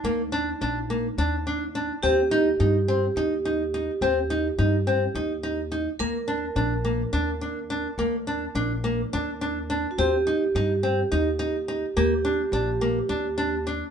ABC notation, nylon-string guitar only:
X:1
M:7/8
L:1/8
Q:1/4=106
K:Eb
V:1 name="Nylon-string guitar"
B, D D B, D D D | C E E C E E E | C E E C E E E | B, D D B, D D D |
B, D D B, D D D | C E E C E E E | B, D D B, D D D |]